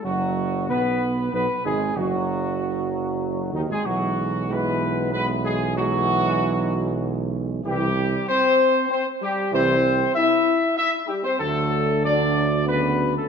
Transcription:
<<
  \new Staff \with { instrumentName = "Trumpet section" } { \time 3/4 \key b \dorian \tempo 4 = 95 fis'4 b'4 b'8 gis'8 | fis'2~ fis'8 dis'16 gis'16 | fis'4 b'4 b'8 gis'8 | fis'2~ fis'8 r8 |
g'4 c''4 c''8 g'8 | c''4 e''4 e''8 g'16 c''16 | a'4 d''4 b'8. a'16 | }
  \new Staff \with { instrumentName = "French horn section" } { \time 3/4 \key b \dorian fis4 b4 b8 gis8 | fis2~ fis8 dis16 gis16 | fis4 b4 b8 gis8 | fis2~ fis8 r8 |
g4 c'4 c'8 g8 | c'4 e'4 e'8 g16 c'16 | a4 d'4 b8. a16 | }
  \new Staff \with { instrumentName = "Trombone section" } { \clef bass \time 3/4 \key b \dorian << { fis4 b4 b8 gis8 | fis2~ fis8 dis16 gis16 | gis4 gis4 gis4 | gis2. |
g8 r2 r8 | g8 r2 r8 | fis4 fis2 | } \\ { r2. | r2. | e4 e4 e4 | e2. |
e8 r2 r8 | e8 r2 r8 | d4 d4 cis4 | } >> }
  \new Staff \with { instrumentName = "Tuba" } { \clef bass \time 3/4 \key b \dorian fis,,4 b,,4 b,,8 gis,,8 | fis,,2~ fis,,8 dis,16 gis,,16 | b,,2.~ | b,,2. |
c,4 r2 | c,4 r2 | d,2. | }
>>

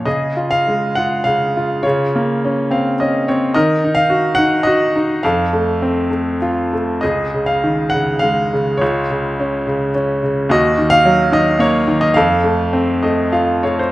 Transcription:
<<
  \new Staff \with { instrumentName = "Grand piano" } { \time 3/4 \key des \major \tempo 4 = 104 << { ees''8. f''8. ges''8 f''4 | des''2 r4 | ees''8. f''8. ges''8 ees''4 | f''2 r4 |
ees''8. f''8. ges''8 f''4 | des''2 r4 | ees''8. f''8. ees''8 des''8. ees''16 | f''2 r8 des''16 c''16 | } \\ { aes'4. r4. | f'2 r4 | bes'4. r4. | a'2 r4 |
aes'4. r4. | f'2 r4 | ges'4. r4. | a'2 r4 | } >> }
  \new Staff \with { instrumentName = "Grand piano" } { \time 3/4 \key des \major des8 f'8 aes8 f'8 des8 f'8 | des8 bes8 des'8 <c' f''>8 <des' ees''>8 <c' des''>8 | ees8 ees'8 ges'8 ees'8 ges'8 ees'8 | f,8 a8 c'8 a8 f'8 a8 |
des,8 des8 ees8 des8 aes8 des8 | des,8 des8 des'8 des8 des'8 des8 | ees,8 ees8 ges8 ees8 bes8 ees8 | f,8 a8 c'8 <a ees''>8 <f' f''>8 <a f''>8 | }
>>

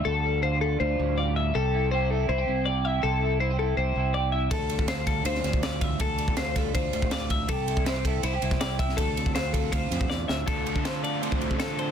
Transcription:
<<
  \new Staff \with { instrumentName = "Clean electric guitar" } { \time 4/4 \key d \minor \tempo 4 = 161 a'4 c''8 a'8 c''4 d''8 e''8 | a'4 c''8 a'8 c''4 d''8 e''8 | a'4 c''8 a'8 c''4 d''8 e''8 | a'4 c''8 a'8 c''4 d''8 e''8 |
a'4 c''8 a'8 c''4 d''8 e''8 | a'4 c''8 a'8 c''4 d''8 e''8 | a'4 c''8 a'8 c''4 d''8 e''8 | a'4 c''8 d''8 c''4 a'8 c''8 | }
  \new Staff \with { instrumentName = "Overdriven electric guitar" } { \time 4/4 \key d \minor r1 | r1 | r1 | r1 |
r1 | r1 | r1 | <d a d' f' a'>8 <d' f' a'>8 <a d' f' a'>8 <d' f' a'>8 <d a d' f' a'>8 <d' f' a'>8 <a d' f' a'>4 | }
  \new Staff \with { instrumentName = "Clean electric guitar" } { \time 4/4 \key d \minor << { <g a'>8 g8 f'8 g8 f'8 g8 f'8 g8 | g'8 e'8 g'8 e'8 e'16 g'16 e'8 g'8 e'8 | g'8 e'8 e'16 g'16 e'8 g'8 e'8 g'8 e'8 | a'8 g8 f'8 g8 f'8 g8 f'8 g8 |
a'8 g8 f'8 g8 f'8 g8 f'8 g8 | g'8 e'8 e'16 g'16 e'8 e'16 g'16 e'8 g'8 e'8 | a'8 c'8 f'8 c'8 f'8 c'8 f'8 c'8 | r8 a'8 f'4 c'4 f'8 a'8 | } \\ { <d, d>4 d4. a,4. | c4 c'4. c4. | c4 c'4. c4. | d,4 d4. a,4. |
d,4 d4. a,4. | c4 c'4. c4. | d,4 d4. a,4. | d,4. d4 a,4. | } >> }
  \new Staff \with { instrumentName = "Fingered electric bass" } { \clef bass \time 4/4 \key d \minor d,2 d,8 d,4. | c,2 c,8 c,4. | c,2 c,8 c,4. | d,2 d,8 d,4. |
d,2 d,8 d,4. | c,2 c,8 c,4. | d,2 d,8 f,8 e,8 d,8 | d,8. d4. d,8 d4~ d16 | }
  \new DrumStaff \with { instrumentName = "Drums" } \drummode { \time 4/4 r4 r4 r4 r4 | r4 r4 r4 r4 | r4 r4 r4 r4 | <bd cymr>8 cymr16 bd16 <cymr sn>8 <bd cymr>8 cymr16 sn16 <cymr sn>16 bd16 <cymr sn>8 <bd cymr>8 |
<bd cymr>8 cymr16 bd16 <cymr sn>8 <bd cymr sn>8 <bd cymr>8 cymr16 bd16 <cymr sn>8 <bd cymr>8 | <bd cymr>8 cymr16 bd16 <cymr sn>8 <bd cymr>8 cymr8 cymr16 <bd sn>16 <cymr sn>8 <bd cymr>16 sn16 | <bd cymr>8 cymr16 bd16 <cymr sn>8 <bd cymr>8 <bd cymr>8 <cymr sn>16 bd16 sn8 sn8 | <bd cymr>8 cymr16 bd16 <cymr sn>8 cymr8 cymr16 bd16 cymr16 bd16 <cymr sn>8 cymr8 | }
>>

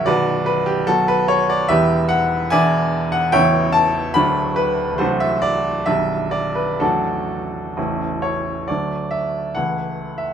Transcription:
<<
  \new Staff \with { instrumentName = "Grand piano" } { \time 2/4 \key d \major \tempo 4 = 72 <fis' b' d''>8 b'16 g'16 a'16 b'16 cis''16 d''16 | <g' b' e''>8 fis''8 <d'' e'' gis''>8. fis''16 | <cis'' e'' g''>8 a''8 b''8 b'8 | <fis' a' c''>16 e''16 d''8 e''8 d''16 b'16 |
<d' fis' a'>4. cis''8 | d''8 e''8 fis''8. e''16 | }
  \new Staff \with { instrumentName = "Grand piano" } { \clef bass \time 2/4 \key d \major <b,,, b,,>4 <fis b fis'>4 | <e,, e, g b e'>4 <e,, e, e b d'>4 | <a,,, a,, e b cis'>4 <d,, d, fis a d'>4 | <c,, c, fis a d'>4 <b,,, b,, g d'>4 |
<a,,, a,, fis a>4 <a,,, a,, e a cis'>4 | <d, fis a d'>4 <cis, e a e'>4 | }
>>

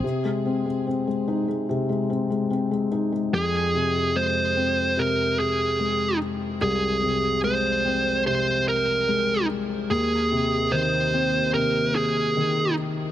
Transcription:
<<
  \new Staff \with { instrumentName = "Lead electric guitar" } { \time 4/4 \key f \minor \tempo 4 = 73 r1 | aes'4 c''4 bes'8 aes'4 r8 | aes'4 c''4 c''8 bes'4 r8 | aes'4 c''4 bes'8 aes'4 r8 | }
  \new Staff \with { instrumentName = "Felt piano" } { \clef bass \time 4/4 \key f \minor c16 aes16 c'16 aes16 c'16 aes16 ees'16 aes16 c16 aes16 c'16 aes16 c'16 aes16 ees'16 aes16 | f,8 c8 aes8 c'8 c4 aes4 | c,8 c8 aes8 c'8 c4 aes4 | ees,8 c8 ees8 c'8 c4 ees4 | }
>>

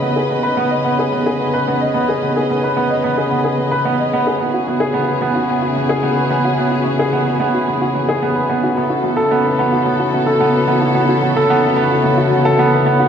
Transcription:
<<
  \new Staff \with { instrumentName = "String section" } { \time 4/4 \key b \mixolydian \tempo 4 = 110 <cis cis' gis' b' dis''>1~ | <cis cis' gis' b' dis''>1 | <cis cis' e' fis' gis'>1~ | <cis cis' e' fis' gis'>1 |
<cis cis' e' fis' a'>1~ | <cis cis' e' fis' a'>1 | }
  \new Staff \with { instrumentName = "Grand piano" } { \time 4/4 \key b \mixolydian b16 gis'16 b16 b'16 b16 dis''16 b16 gis'16 b16 gis'16 b16 b'16 b16 dis''16 b16 gis'16 | b16 gis'16 b16 b'16 b16 dis''16 b16 gis'16 b16 gis'16 b16 b'16 b16 dis''16 b16 gis'16 | b16 fis'16 b16 gis'16 b16 b'16 b16 fis'16 b16 fis'16 b16 gis'16 b16 b'16 b16 fis'16 | b16 fis'16 b16 gis'16 b16 b'16 b16 fis'16 b16 fis'16 b16 gis'16 b16 b'16 b16 fis'16 |
b16 fis'16 b16 a'16 b16 b'16 b16 fis'16 b16 fis'16 b16 a'16 b16 b'16 b16 fis'16 | b16 fis'16 b16 a'16 b16 b'16 b16 fis'16 b16 fis'16 b16 a'16 b16 b'16 b16 fis'16 | }
>>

